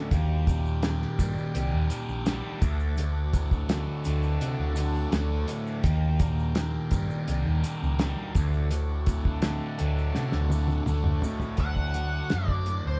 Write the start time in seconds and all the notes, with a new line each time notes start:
Already playing: D2 A2 D3 A3 D4 F#4
0.11 D#2 G3 G4 G5, kick, closed hi-hat, maracas
0.47 A#2, kick, closed hi-hat, maracas
0.66 maracas
0.82 D#3, snare, closed hi-hat, maracas
1.02 snare
1.18 G2 G3, kick, closed hi-hat, maracas
1.38 maracas
1.54 C2 G4, closed hi-hat, maracas
1.73 D#2
1.90 D#3, closed hi-hat, maracas
2.09 A#1, maracas
2.25 G3, snare, closed hi-hat, maracas
2.33 D3
2.61 D2 A3 F#4 D5, kick, closed hi-hat, maracas
2.80 maracas
2.95 D2, closed hi-hat, maracas
3.33 A2, kick, closed hi-hat, maracas
3.51 kick, maracas
3.57 A2
3.69 D3, snare, closed hi-hat, maracas
4.05 D2 A3, closed hi-hat, maracas
4.19 D3, maracas
4.41 C3 F#4, closed hi-hat, maracas
4.59 D2
4.76 D3, closed hi-hat, maracas
4.81 D4
4.95 maracas
5.11 D2 A3, snare, closed hi-hat, maracas
5.47 A2, closed hi-hat, maracas
5.67 maracas
5.82 D#2 A#3 G4 G5, kick, closed hi-hat, maracas
6.19 A#2, kick, closed hi-hat, maracas
6.39 maracas
6.55 D#3, snare, closed hi-hat, maracas
6.91 G2 G3, kick, closed hi-hat, maracas
7.11 maracas
7.26 C2 G4, closed hi-hat, maracas
7.46 D#2
7.62 D#3, closed hi-hat, maracas
7.82 C#2, maracas
7.93 D2
7.99 G3, snare, closed hi-hat, maracas
8.35 D2 A3 F#4 D5, kick, closed hi-hat, maracas
8.54 A2, maracas
8.71 D2, closed hi-hat, maracas
9.06 A2, kick, closed hi-hat, maracas
9.18 D3
9.25 kick
9.42 D3, snare, closed hi-hat, maracas
9.78 D2 D3 A3, closed hi-hat
9.98 maracas
10.15 C3 F#4, snare, maracas
10.32 D2, snare
10.42 D2
10.50 D3, high tom, maracas
10.68 high tom, maracas
10.86 D2 A3, mid tom, maracas
11.04 A2, mid tom
11.22 A2, floor tom, maracas
11.40 floor tom, maracas
11.57 D2 F#3 D4 A4 F#5, kick, closed hi-hat
11.76 kick
11.94 F#4, closed hi-hat
12.30 F#2 D3 D5, snare, closed hi-hat
12.48 kick
12.66 A2, closed hi-hat
12.85 D2 C5